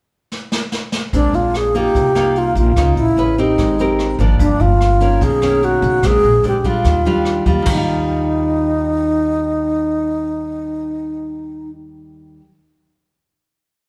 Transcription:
0.32 snare
0.52 snare
0.72 snare
0.92 snare
1.13 A#1 A#2 G#3 C4 D4, kick, closed hi-hat
1.33 A#1 F4, closed hi-hat
1.54 G#4, cross-stick, closed hi-hat
1.75 A#3 D#4 F4 G4, closed hi-hat
1.95 C2 C3, kick, closed hi-hat
2.15 A#3 D#4 F4, cross-stick, closed hi-hat
2.36 F4, closed hi-hat
2.55 A#1 F4, closed hi-hat
2.76 C#2 C#3 A#3 D#4 F4, kick, cross-stick, closed hi-hat
2.96 A#1 E4, closed hi-hat
3.17 A1 C#4 G#4 B4, closed hi-hat
3.38 C4 D#4 G4 A#4, closed hi-hat
3.58 G#1 G#3, kick, cross-stick, closed hi-hat
3.79 C4 G4 A#4, closed hi-hat
3.99 cross-stick, closed hi-hat
4.19 G#1 F3 A#3 D4, closed hi-hat
4.39 G1 G2 D4, kick, closed hi-hat
4.60 G1 F4, closed hi-hat
4.81 cross-stick, closed hi-hat
5.01 D#3 A#3 C#4, closed hi-hat
5.21 B1 B2 G#4, kick, closed hi-hat
5.42 D#3 A#3 C#4, cross-stick, closed hi-hat
5.62 F#4, closed hi-hat
5.82 B1, closed hi-hat
6.03 A#1 A#2 G#3 C4 D4 G#4, kick, cross-stick, closed hi-hat
6.23 A#1, closed hi-hat
6.43 A#1 G#3 C4 D4, closed hi-hat
6.48 G4
6.64 G3 D4 F4, kick, closed hi-hat
6.84 D#2 D#3, kick, cross-stick, closed hi-hat
7.05 G3 D4 F4, closed hi-hat
7.25 cross-stick, closed hi-hat
7.46 D#2 G3 F4, kick, closed hi-hat
7.62 D#3, kick, floor tom, crash
7.66 D#2 G3 D#4
7.77 F4

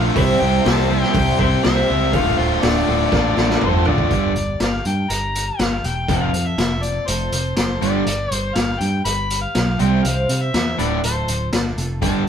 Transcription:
Already playing: A2 D3 A3 D4 F4 A4
0.16 C2 C3 E3 G3 C4 E4 G4 B4 C5 C#5 E5, kick, open hi-hat, cowbell
0.40 C2 G3 C4 E4 G4 C5 G5
0.65 C2 C3 E3 G3 C4 E4 G4 C5 A5, snare, open hi-hat, cowbell
0.79 snare
0.89 C3 G3 C4 E4 G4 C5
1.02 G5, snare
1.14 C2 G3 C4 E4 G4 C5 G5, kick, open hi-hat, cowbell
1.39 C2 C3 G3 C4 E4 G4 C5 E5 G5, kick, cowbell
1.63 C2 C3 E3 G3 C4 E4 G4 C5 E5, snare, open hi-hat, cowbell
1.89 C#2 G3 C4 E4 G4 C5
2.13 D1 D2 A2 D3 A3 D4 F4 A4 D5 F5, kick, open hi-hat, cowbell
2.38 D1 D3 A3 D4 F4 A4 C5 D5
2.62 D1 D2 A2 D3 A3 D4 F4 A4 D5, snare, open hi-hat, cowbell
2.75 snare
2.88 D1 D2 A2 D3 A3 D4 F4 A4
3.11 A1 A2 D3 A3 D4 F4 A4, kick, snare, cowbell
3.37 A1 D2 A2 D3 A3 D4 F4 A4, snare, cowbell
3.50 snare
3.60 G1 A2 D3 A3 D4 F4 A4, mid tom, cowbell
3.64 C5
3.85 A1 D3 A3 D4 F4 A4 D5, floor tom
3.98 kick
4.11 G1 G2 D3 G3 D4 G4 A#4, kick, closed hi-hat
4.35 G1 D4 G4 A#4, closed hi-hat
4.60 G1 G3 D4 G4 A#4 C5 D5 F5, snare, closed hi-hat
4.84 G2 D4 G4 A#4 G5, closed hi-hat
5.09 G1 G3 D4 G4 A#4 A#5, closed hi-hat
5.34 D4 G4 A#4, closed hi-hat
5.48 F5
5.59 G1 D4 G4 A#4, snare, closed hi-hat
5.83 E1 D4 G4 A#4 G5, closed hi-hat
6.08 F1 F2 C3 F3 A3 C4 F4 A4 F5, kick, closed hi-hat
6.33 F2 C4 F4 A4, closed hi-hat
6.46 E5
6.58 F1 A3 C4 F4 A4, snare, closed hi-hat
6.82 C4 F4 A4 D5, closed hi-hat
7.07 F1 F3 A3 C4 F4 A4 C5, closed hi-hat
7.32 F1 C4 F4 A4, closed hi-hat
7.56 F#1 A3 C4 F4 G4 A4 C5, snare, closed hi-hat
7.81 G1 G2 D3 G3 D4 G4 B4 D5, closed hi-hat
8.06 G1 G3 D4 G4 B4, closed hi-hat
8.31 G1 D4 G4 B4 C5, closed hi-hat
8.55 G1 G3 D4 G4 B4 F5, snare, closed hi-hat
8.80 G2 D4 G4 B4 G5, closed hi-hat
9.05 G1 G3 D4 G4 B4 B5, closed hi-hat
9.30 D4 G4 B4, closed hi-hat
9.41 F5
9.55 B1 G3 D4 G4 B4, snare, closed hi-hat
9.79 C2 C3 G3 C4 E4 C5 G5, closed hi-hat
10.04 C2 C3 E3 G3 C4 E4 C5 F5, closed hi-hat
10.29 C3 G3 C4 E4, closed hi-hat
10.42 E5
10.54 E2 G3 C4 E4 C5, snare, closed hi-hat
10.78 D1 D2 A2 D3 D4 F4 A4 B4 D5, closed hi-hat
11.03 D1 D3 A3 D4 F4 A4 C5, closed hi-hat
11.28 D1 D4 F4 A4, closed hi-hat
11.52 G1 A3 D4 F4 A4, snare, closed hi-hat
11.76 F1 D4 F4 A4, closed hi-hat
12.01 G1 G2 D3 G3 D4 G4 A#4 A5, kick, closed hi-hat

